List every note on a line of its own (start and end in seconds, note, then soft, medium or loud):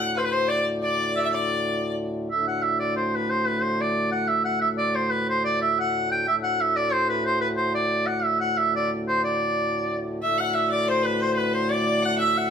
0.00 2.29 D2 medium
0.00 2.30 A2 medium
0.00 0.14 F#5 medium
0.00 0.19 F#5 medium
0.17 0.24 B4 medium
0.17 0.26 C5 medium
0.24 0.35 B4 medium
0.24 0.31 B4 medium
0.32 0.50 C5 medium
0.32 0.51 C5 medium
0.48 0.65 D5 medium
0.48 0.66 D5 medium
0.83 1.13 D5 medium
0.83 1.18 D5 medium
1.16 1.26 D5 medium
1.16 1.20 E5 medium
1.16 1.24 E5 medium
1.24 1.32 E5 medium
1.24 1.28 E5 medium
1.31 1.93 D5 medium
1.31 1.94 D5 medium
2.31 6.27 D2 medium
2.31 6.26 A2 medium
2.31 2.46 E5 medium
2.48 2.64 F#5 medium
2.63 2.79 E5 medium
2.79 2.95 D5 medium
2.96 3.17 C5 medium
3.15 3.31 B4 medium
3.30 3.49 C5 medium
3.47 3.64 B4 medium
3.62 3.82 C5 medium
3.81 4.11 D5 medium
4.12 4.30 F#5 medium
4.28 4.44 E5 medium
4.45 4.60 F#5 medium
4.61 4.69 E5 medium
4.78 4.96 D5 medium
4.95 5.12 C5 medium
5.10 5.27 B4 medium
5.29 5.44 C5 medium
5.44 5.59 D5 medium
5.62 5.76 E5 medium
5.80 6.09 F#5 medium
6.11 6.26 G5 medium
6.28 10.21 D2 medium
6.28 10.21 A2 medium
6.28 6.35 E5 medium
6.43 6.62 F#5 loud
6.61 6.78 E5 medium
6.76 6.94 D5 medium
6.92 7.08 C5 medium
7.09 7.24 B4 medium
7.26 7.40 C5 medium
7.41 7.48 B4 medium
7.57 7.73 C5 medium
7.75 8.08 D5 medium
8.07 8.26 F#5 medium
8.24 8.40 E5 medium
8.40 8.59 F#5 medium
8.58 8.74 E5 medium
8.75 8.90 D5 medium
9.08 9.23 C5 medium
9.24 10.02 D5 medium
10.21 12.50 D2 medium
10.21 12.50 A2 medium
10.21 10.42 E5 medium
10.21 10.39 E5 medium
10.38 10.55 F#5 medium
10.38 10.57 F#5 medium
10.54 10.70 E5 medium
10.54 10.72 E5 medium
10.70 10.90 D5 medium
10.70 10.87 D5 medium
10.88 11.04 C5 medium
10.88 11.07 C5 medium
11.03 11.22 B4 medium
11.20 11.36 C5 medium
11.20 11.32 C5 medium
11.33 11.55 B4 medium
11.33 11.39 C5 medium
11.38 11.53 B4 medium
11.53 11.71 C5 medium
11.53 11.73 C5 medium
11.69 12.04 D5 medium
12.03 12.18 F#5 medium
12.03 12.19 F#5 medium
12.18 12.50 E5 medium
12.18 12.39 E5 loud
12.38 12.50 F#5 loud